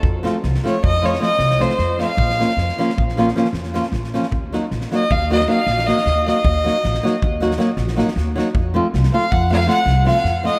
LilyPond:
<<
  \new Staff \with { instrumentName = "Fiddle" } { \time 11/8 \tempo 4 = 156 r4. des''8 ees''8 des''8 ees''4 c''4 f''8~ | f''2 r2. r8 | r4. ees''8 f''8 ees''8 f''4 ees''4 ees''8~ | ees''2 r2. r8 |
r4. f''8 ges''8 f''8 ges''4 f''4 ees''8 | }
  \new Staff \with { instrumentName = "Nylon-string guitar" } { \time 11/8 r8 <f a c' f'>8 r8 <f a c' f'>8 r8 <f a c' f'>8 <f a c' f'>8 r8 <f a c' f'>8 r8 <f a c' f'>8 | r8 <f bes des' f'>8 r8 <f bes des' f'>8 r8 <f bes des' f'>8 <f bes des' f'>8 r8 <f bes des' f'>8 r8 <f bes des' f'>8 | r8 <ges bes ees' ges'>8 r8 <ges bes ees' ges'>8 r8 <ges bes ees' ges'>8 <ges bes ees' ges'>8 r8 <ges bes ees' ges'>8 r8 <ges bes ees' ges'>8 | r8 <ges bes ees' ges'>8 r8 <ges bes ees' ges'>8 r8 <ges bes ees' ges'>8 <ges bes ees' ges'>8 r8 <ges bes ees' ges'>8 r8 <ges bes ees' ges'>8 |
r8 <f a c' f'>8 r8 <f a c' f'>8 r8 <f a c' f'>8 <f a c' f'>8 r8 <f a c' f'>8 r8 <f a c' f'>8 | }
  \new Staff \with { instrumentName = "Upright bass" } { \clef bass \time 11/8 f,4 c,8 r8 f,4. c,4 f,4 | bes,,4 f,8 r8 bes,,4. f,4 bes,,4 | ees,4 bes,,8 r8 ees,4. bes,,4 ees,4 | ees,4 bes,,8 r8 ees,4. bes,,4 ees,4 |
f,4 c,8 r8 f,4. c,4 f,4 | }
  \new DrumStaff \with { instrumentName = "Drums" } \drummode { \time 11/8 bd8 sn8 sn16 sn16 sn8 bd8 sn16 sn16 sn8 sn16 sn16 sn16 sn16 sn8 sn8 | bd16 sn16 sn16 sn16 sn16 sn16 sn16 sn16 bd16 sn16 sn16 sn16 sn16 sn16 sn16 sn16 sn16 sn16 <bd sn>16 sn16 sn16 sn16 | bd8 sn8 sn16 sn16 sn8 bd8 sn16 sn8. sn16 sn16 sn16 sn16 sn8 sn8 | bd8 sn8 sn16 sn16 sn8 bd8 sn16 sn16 sn8 sn16 sn16 sn16 sn16 sn8 sn8 |
bd4 sn16 sn8. bd8 sn16 sn16 sn8 sn8 sn16 sn16 sn8 sn8 | }
>>